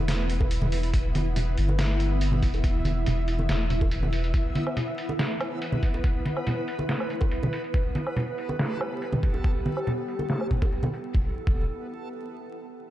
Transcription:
Already playing: sub bass E1, synth texture B3 B4, ambient pad E4 B4
0.08 snare, closed hi-hat
0.30 closed hi-hat
0.41 kick, high bongo
0.51 closed hi-hat
0.62 high bongo, high conga, low conga
0.72 open hi-hat
0.83 closed hi-hat
0.93 sub bass E1, synth texture E5, ambient pad E5, kick, closed hi-hat
1.15 closed hi-hat, high conga
1.36 closed hi-hat, low conga
1.57 sub bass G1, open hi-hat
1.68 high bongo, high conga
1.79 snare, closed hi-hat
2.00 closed hi-hat
2.21 closed hi-hat
2.32 high conga, low conga
2.43 sub bass E1, kick, open hi-hat
2.54 closed hi-hat, high bongo
2.64 kick, closed hi-hat
2.85 closed hi-hat, high conga
3.06 sub bass E1, closed hi-hat, low conga
3.28 open hi-hat
3.39 high bongo, high conga
3.49 sub bass E1, snare, closed hi-hat
3.70 closed hi-hat, low conga
3.81 kick, high bongo
3.91 closed hi-hat
4.03 high bongo, high conga, low conga
4.13 open hi-hat
4.24 closed hi-hat
4.34 ambient pad B4, synth texture B4, kick, closed hi-hat
4.55 closed hi-hat, high conga
4.67 low woodblock
4.77 closed hi-hat, low conga
4.98 open hi-hat
5.09 high bongo, high conga
5.19 snare, closed hi-hat
5.41 closed hi-hat, low woodblock
5.62 closed hi-hat
5.72 high conga, low conga
5.83 kick, open hi-hat
5.94 closed hi-hat, high bongo
6.04 kick, closed hi-hat
6.25 closed hi-hat, high conga
6.37 low woodblock
6.47 closed hi-hat, low conga
6.68 open hi-hat
6.79 high bongo, high conga
6.89 snare, closed hi-hat
7.00 low woodblock
7.10 closed hi-hat
7.21 kick, high bongo
7.31 closed hi-hat
7.43 high bongo, high conga, low conga
7.53 open hi-hat
7.64 closed hi-hat
7.74 ambient pad G4, synth texture A4, kick, closed hi-hat
7.95 closed hi-hat, high conga
8.07 low woodblock
8.16 closed hi-hat, low conga
8.38 open hi-hat
8.49 high bongo, high conga
8.59 snare, closed hi-hat
8.81 closed hi-hat, low woodblock
9.02 closed hi-hat
9.13 high conga, low conga
9.23 kick, open hi-hat
9.34 closed hi-hat, high bongo
9.44 kick, closed hi-hat
9.66 closed hi-hat, high conga
9.77 low woodblock
9.87 closed hi-hat, low conga
10.08 open hi-hat
10.19 high bongo, high conga
10.30 snare, closed hi-hat
10.41 low woodblock
10.51 kick, closed hi-hat, low conga
10.62 kick, high bongo
10.72 closed hi-hat
10.83 high bongo, high conga, low conga
10.94 open hi-hat
11.05 closed hi-hat
11.15 sub bass E1, kick
11.47 sub bass E1, kick

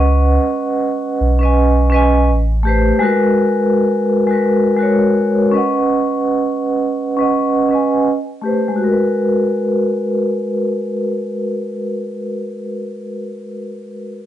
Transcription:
Already playing: sub bass C#2, vibraphone C#4 B4 D#5 F#5
1.21 sub bass B1
1.39 vibraphone C#4 B4
1.43 vibraphone D#5 G#5
1.90 vibraphone C#4 B4
1.94 vibraphone D#5 G#5
2.29 sub bass A1
2.63 vibraphone A3 G4 B4
2.69 vibraphone C5
2.99 vibraphone G#3 F#4 A#4
3.05 vibraphone B4
4.27 vibraphone G#3 F#4 A#4
4.33 vibraphone B4
4.77 vibraphone G#3 F#4 A#4
4.83 vibraphone C#5
5.52 vibraphone C#4 B4 D#5
5.58 vibraphone F#5
7.17 vibraphone C#4 B4 D#5
7.23 vibraphone F#5
7.69 vibraphone C#4 B4 D#5
7.75 vibraphone G#5
8.41 vibraphone A3 G4
8.45 vibraphone B4 C5
8.68 vibraphone G#3
8.76 vibraphone F#4
8.84 vibraphone A#4
8.92 vibraphone B4

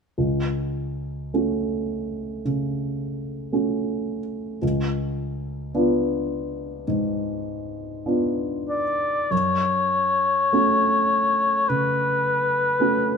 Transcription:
0.18 grand piano C#2
1.34 grand piano A3 C#4 F#4
2.45 grand piano C#3
3.52 grand piano A3 C#4 F#4
4.62 grand piano C#2
5.74 grand piano B3 D4 F4
6.88 grand piano G#2
8.06 grand piano B3 D4 F4
8.69 oboe D5
9.31 grand piano F#2, oboe C#5
10.53 grand piano A3 C#4 F#4
11.69 grand piano C#3, oboe B4
12.80 grand piano A3 C#4 F#4

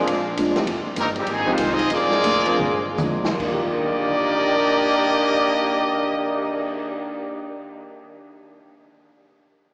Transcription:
Already playing: trombone section F3 G#3 D4, trumpet section A#3 F4 G#4 D5
0.07 upright bass A#1, steel-string acoustic guitar A#2 F3 G#3, kick, ride
0.11 steel-string acoustic guitar D4
0.37 upright bass G1, steel-string acoustic guitar A#2 F3 G#3 D4, kick, hi-hat pedal, ride
0.54 grand piano F3 G#3 C4 D#4 G4, snare, ride
0.67 upright bass F1, steel-string acoustic guitar F2 D#3 G#3 C4, kick, ride
0.85 muted upright bass stroke
0.96 upright bass G1, steel-string acoustic guitar F2 D#3 G#3 C4, trumpet section G3 C4 D#4 A#4, trombone section A#3, kick, hi-hat pedal, ride
1.16 trombone section G3, trumpet section G#3 C4 G4, ride
1.26 upright bass G#1, steel-string acoustic guitar F2 D#3 G#3 C4, trombone section C3 D#3 G#3, kick, ride
1.30 trumpet section C4 D#4 G#4
1.46 trombone section D#3 G#3 C4, grand piano F3 G#3 C4 D#4 G4
1.51 trumpet section G#3 D#4 F4 C5
1.57 upright bass C2, steel-string acoustic guitar F2 D#3 G#3 C4, kick, hi-hat pedal, ride
1.70 trombone section G#3 C4 D#4, trumpet section C4 F4 G#4 D#5
1.79 ride
1.90 upright bass A#1, steel-string acoustic guitar A#2 F3 G#3 D4, trombone section F3 D4 G#4, trumpet section A#3 F4 G#4 D5, kick, ride
2.11 snare
2.24 upright bass D2, steel-string acoustic guitar A#2 F3 G#3 D4, kick, hi-hat pedal, ride
2.45 grand piano F3 A#3 C4 D4 G#4, ride
2.59 upright bass G2, steel-string acoustic guitar A#2 F3, mid tom
2.64 steel-string acoustic guitar G#3 D4
2.97 upright bass F2, steel-string acoustic guitar A#2 F3, hi-hat pedal, mid tom
3.02 steel-string acoustic guitar G#3 D4
3.25 grand piano D#2, snare
3.33 grand piano D#3
3.38 upright bass D#2, trombone section D#3 A#3 D4 G4, steel-string acoustic guitar D#3, grand piano A#3, trumpet section A#3 G4 D5 D#5, kick, crash
3.43 steel-string acoustic guitar G3 A#3, grand piano F4
3.52 grand piano G4
3.67 cymbal swell
3.82 grand piano A#4
3.89 grand piano D5
3.98 grand piano F5
4.07 grand piano A#5
4.17 grand piano D6
4.27 grand piano F6
4.40 grand piano A#6

